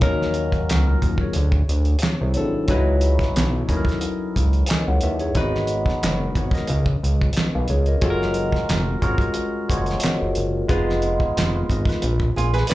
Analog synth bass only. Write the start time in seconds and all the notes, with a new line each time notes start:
0.03 D#2
0.69 C#2
1.03 D#2
1.36 D2
1.69 D2
2.21 C2
2.36 G#1
2.69 C#2
3.36 B1
3.69 D#2
4.37 C#2
4.88 C#2
5.03 D#2
5.36 G#1
6.03 F#1
6.36 G#1
6.70 C#2
7.03 C#2
7.55 B1
7.69 C#2
8.03 F#1
8.70 F1
9.03 G#1
9.70 F#1
10.22 F#1
10.37 F#1
10.70 F1
11.37 F1
11.70 G#1
12.03 A#1
12.37 A#1